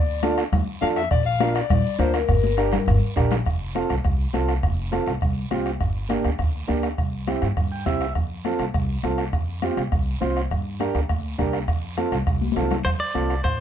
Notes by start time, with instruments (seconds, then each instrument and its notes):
Already playing: upright bass D2, clarinet D5
0.23 transistor combo organ D4 F4 A4, bombo rim, high conga, short guiro
0.38 bombo rim, short guiro
0.53 upright bass D2, bombo low, bombo rim, high conga, low conga, long guiro
0.81 upright bass F2, transistor combo organ D4 F4 A4, clarinet F5, bombo rim, high conga, short guiro
0.96 clarinet E5, bombo rim, short guiro
1.11 upright bass A#1, clarinet D5, bombo low, bombo rim, high conga, long guiro
1.25 clarinet F5
1.40 transistor combo organ D4 F4 A#4, bombo rim, high conga, short guiro
1.55 clarinet D5, bombo rim, short guiro
1.70 upright bass A#1, bombo low, bombo rim, high conga, low conga, long guiro
1.98 upright bass D2, transistor combo organ D4 F4 A#4, clarinet C5, bombo rim, high conga, short guiro
2.14 clarinet A#4, bombo rim, short guiro
2.28 upright bass G1, bombo low, bombo rim, high conga, long guiro
2.44 high conga
2.57 transistor combo organ D4 G4 A#4, bombo rim, short guiro
2.72 bombo rim, low conga, short guiro
2.86 upright bass G1, bombo low, bombo rim, low conga, long guiro
3.16 upright bass A#1, transistor combo organ D4 G4 A#4, bombo low, bombo rim, short guiro
3.31 bombo rim, low conga, short guiro
3.46 upright bass F1, bombo low, bombo rim, high conga, long guiro
3.75 transistor combo organ C4 F4 A4, bombo rim, high conga, short guiro
3.89 upright bass C2, bombo rim, short guiro
4.04 upright bass C2, bombo low, bombo rim, high conga, long guiro
4.33 upright bass C2, transistor combo organ C4 F4 A4, bombo rim, high conga, short guiro
4.48 bombo rim, short guiro
4.63 upright bass F1, bombo low, bombo rim, high conga, long guiro
4.91 transistor combo organ C4 F4 A4, bombo rim, high conga, short guiro
5.06 upright bass C2, bombo rim, short guiro
5.21 upright bass C2, bombo low, bombo rim, high conga, long guiro
5.51 upright bass C2, transistor combo organ C4 F4 G4, bombo rim, high conga, short guiro
5.66 bombo rim, short guiro
5.80 upright bass G1, bombo low, bombo rim, high conga, long guiro
6.09 transistor combo organ A#3 D4 G4, bombo rim, high conga, short guiro
6.24 upright bass D2, bombo rim, short guiro
6.39 upright bass D2, bombo low, bombo rim, high conga, long guiro
6.68 upright bass D2, transistor combo organ A#3 D4 G4, bombo rim, high conga, short guiro
6.83 bombo rim, short guiro
6.98 upright bass C2, bombo low, bombo rim, high conga, long guiro
7.27 transistor combo organ C4 E4 G4, bombo rim, high conga, short guiro
7.42 upright bass G2, bombo rim, short guiro
7.57 upright bass G2, bombo low, bombo rim, high conga, long guiro
7.72 transistor combo organ G5
7.86 upright bass C2, transistor combo organ C4 E4 G4 E5, bombo low, bombo rim, high conga, short guiro
8.01 bombo rim, short guiro
8.15 upright bass F2, bombo low, bombo rim, high conga, long guiro
8.44 transistor combo organ C4 F4 A4, bombo rim, high conga, short guiro
8.59 upright bass C2, bombo rim, short guiro
8.74 upright bass C2, bombo low, bombo rim, high conga, long guiro
9.03 upright bass C2, transistor combo organ C4 F4 A4, bombo rim, high conga, short guiro
9.18 bombo rim, short guiro
9.33 upright bass F2, bombo low, bombo rim, high conga, long guiro
9.62 transistor combo organ C4 F4 G4, bombo rim, high conga, short guiro
9.77 upright bass C2, bombo rim, short guiro
9.92 upright bass C2, bombo low, bombo rim, high conga, long guiro
10.21 upright bass C2, transistor combo organ C4 F4 C5, bombo rim, high conga, short guiro
10.36 bombo rim, short guiro
10.51 upright bass G2, bombo low, bombo rim, high conga, long guiro
10.80 transistor combo organ D4 G4 A#4, bombo rim, high conga, short guiro
10.95 upright bass D2, bombo rim, short guiro
11.09 upright bass D2, bombo low, bombo rim, high conga, long guiro
11.38 upright bass C2, transistor combo organ D4 G4 A#4, bombo low, bombo rim, high conga, short guiro
11.53 bombo rim, short guiro
11.68 upright bass F2, bombo low, bombo rim, high conga, long guiro
11.97 transistor combo organ C4 F4 A4, bombo rim, high conga, short guiro
12.12 upright bass C2, bombo rim, short guiro
12.27 upright bass C2, bombo low, bombo rim, high conga, long guiro
12.41 high conga
12.52 transistor combo organ C4, high conga
12.56 upright bass C2, transistor combo organ F4 A4, bombo rim, short guiro
12.62 low conga
12.71 bombo rim, low conga, short guiro
12.85 upright bass F2, clean electric guitar C5, bombo low, bombo rim, high conga, long guiro
13.00 clean electric guitar D5
13.14 upright bass C2, transistor combo organ C4 F4 A4, bombo rim, high conga, short guiro
13.30 bombo rim, short guiro
13.44 upright bass A2, clean electric guitar C5, bombo low, bombo rim, high conga, long guiro